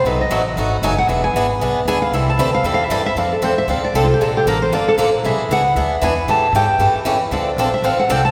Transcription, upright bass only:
0.04 B1
0.30 A1
0.56 G#1
0.82 F#1
1.07 E1
1.33 G#1
1.59 B1
1.74 muted upright bass stroke
1.85 D2
2.11 C2
2.38 D2
2.63 E2
2.89 G2
3.16 F2
3.41 E2
3.67 D2
3.82 muted upright bass stroke
3.94 C2
4.20 A#1
4.46 A1
4.71 G1
4.98 A1
5.23 B1
5.38 muted upright bass stroke
5.49 C#2
5.76 D2
6.02 E2
6.26 A2
6.52 G#2
6.78 G2
6.93 muted upright bass stroke
7.04 E2
7.31 D2
7.56 A#1
7.82 A1
7.97 muted upright bass stroke
8.08 C2

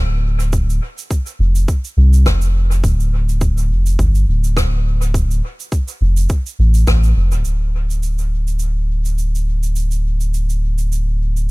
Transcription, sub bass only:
Already playing: D1
1.39 F1
1.97 C2
2.26 F1
2.84 D1
3.70 F1
3.99 G1
4.28 D1
6.01 F1
6.59 A1
6.87 A1
7.16 F1
7.33 D1
7.46 D1

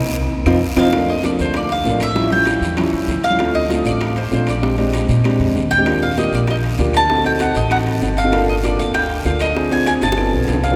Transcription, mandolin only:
0.79 F5
1.09 D#5
1.24 D5
1.41 C5
1.56 D5
1.72 F5
2.02 E5
2.32 G5
3.24 F5
3.55 D#5
3.86 D5
4.17 C5
4.34 C5
4.49 D5
5.71 G5
6.03 F5
6.18 D#5
6.35 D5
6.51 D#5
6.97 A5
7.26 G5
7.41 F#5
7.56 D#5
7.71 F#5
8.18 F5
8.49 D#5
8.65 D5
8.79 F5
8.94 G5
9.26 F5
9.41 D#5
9.72 G#5
9.87 G#5
10.03 A5
10.64 F5

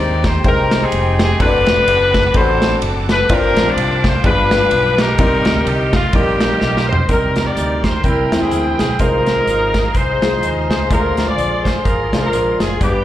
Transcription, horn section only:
Already playing: D#4 G4 D5
0.26 C5
0.46 D#4 G4 A#4
0.83 C4 D#4 G#4
1.22 G#4
1.41 D4 B4
2.35 A4 C5
3.11 B4
3.31 D4 F4 A#4
3.69 F4 D5
4.07 C5
4.25 D4 F4 B4
5.00 D#4 G4 A#4
5.67 G4
5.95 F4
6.14 A#3 D#4 G4
6.90 C5
7.10 D#4 G4 A#4
7.45 G4 A#4 D5
7.83 C5
8.04 E4 A#4 G5
8.41 E4 G#4
8.78 G#4
9.00 D#4 F4 A#4
9.95 D#4 G#4 C5
10.70 C5
10.92 F4 A#4
11.29 F4 G#4 D5
11.66 C5
11.86 F4 A#4
12.24 F4 A#4
12.61 G#4
12.81 B3 D4 G4

